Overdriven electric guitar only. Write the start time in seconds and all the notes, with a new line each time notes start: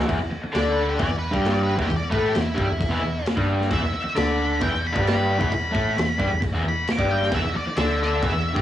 0.07 E2 E3
0.20 E2
0.31 muted overdriven electric guitar stroke
0.44 muted overdriven electric guitar stroke
0.52 D3 D4
0.98 E2 E3
1.09 E2
1.31 G2 G3
1.77 E2 E3
1.90 E2
2.10 A2 A3
2.35 E2
2.55 G2 G3
2.66 E2
2.79 E2
2.89 E2 E3
3.01 E2
3.36 G2 G3
3.71 E2 E3
3.82 E2
3.93 muted overdriven electric guitar stroke
4.04 muted overdriven electric guitar stroke
4.15 D3 D4
4.60 E2 E3
4.72 E2
4.92 G2 G3
5.38 E2 E3
5.51 E2
5.71 A2 A3
5.96 E2
6.18 G2 G3
6.29 E2
6.41 E2
6.53 E2 E3
6.64 E2
6.98 G2 G3
7.31 E2 E3
7.41 E2
7.55 muted overdriven electric guitar stroke
7.68 muted overdriven electric guitar stroke
7.78 D3 D4
8.22 E2 E3
8.34 E2
8.54 G2 G3